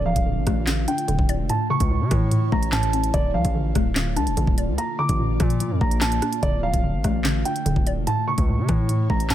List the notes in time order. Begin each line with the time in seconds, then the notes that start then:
Already playing: D1 D3 A3 F4
0.06 F3 F5
0.16 D1, kick, closed hi-hat
0.26 D3
0.36 A1
0.47 A1 A3, kick, cross-stick, closed hi-hat
0.67 D3, snare, clap
0.88 D4 G5, closed hi-hat
0.98 closed hi-hat
1.08 D1 D3, closed hi-hat
1.19 D1, kick
1.29 D5, closed hi-hat
1.39 F1
1.49 A2 A3 E4 C#5 A5, closed hi-hat
1.70 C#3 C#6
1.80 C#2, kick, closed hi-hat
1.91 A2
2.01 C#3
2.11 A2 E3, kick, cross-stick, closed hi-hat
2.31 A2, closed hi-hat
2.52 A1 A3 A#5, kick
2.63 closed hi-hat
2.72 A2 A5, snare, clap
2.83 closed hi-hat
2.93 C#4, closed hi-hat
3.04 closed hi-hat
3.14 D1 D3 A3 F4 D5, kick, closed hi-hat
3.34 D2 F3 F5
3.45 A1, kick, closed hi-hat
3.55 D3
3.75 D1 A3, kick, cross-stick, closed hi-hat
3.96 D3, snare, clap
4.16 D2 D4 A5, closed hi-hat
4.27 D1, closed hi-hat
4.37 A1 D3, closed hi-hat
4.47 D1, kick
4.58 D5, closed hi-hat
4.68 D2
4.78 A#3 D5 A#5, closed hi-hat
4.99 D3 D6
5.09 A1, kick, closed hi-hat
5.19 A#2
5.40 A#2 F3, kick, cross-stick, closed hi-hat
5.50 closed hi-hat
5.60 A#2, closed hi-hat
5.71 F2
5.81 A#1 A#3 A#5, kick
5.91 closed hi-hat
6.01 A#2 A5, snare, clap
6.12 closed hi-hat
6.22 D4, cross-stick, closed hi-hat
6.33 closed hi-hat
6.43 D1 D3 A3 D5, kick, closed hi-hat
6.63 F3 F5
6.74 D1, kick, closed hi-hat
6.84 D3
6.94 A1
7.04 A1 A3, kick, cross-stick, closed hi-hat
7.24 D3, snare, clap
7.45 D4 G5, closed hi-hat
7.56 closed hi-hat
7.66 D1 D3, closed hi-hat
7.76 D1, kick
7.87 D5, closed hi-hat
7.97 F1
8.07 A2 A3 E4 C#5 A5, closed hi-hat
8.28 C#3 C#6
8.38 C#2, kick, closed hi-hat
8.49 A2
8.58 C#3
8.69 A2 E3, kick, cross-stick, closed hi-hat
8.89 A2, closed hi-hat
9.10 A1 A3 A#5, kick
9.20 closed hi-hat
9.30 A2 A5, snare, clap